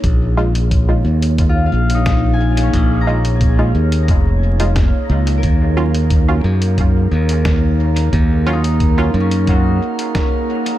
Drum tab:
HH |x--xx--xx--xx--x|x--xx--xx--xx--x|x--xx--xx--xx--x|x--xx--xx--xx--x|
SD |------------o---|------------o---|------------o---|------------o---|
BD |o---o---o---o---|o---o---o---o---|o---o---o---o---|o---o---o---o---|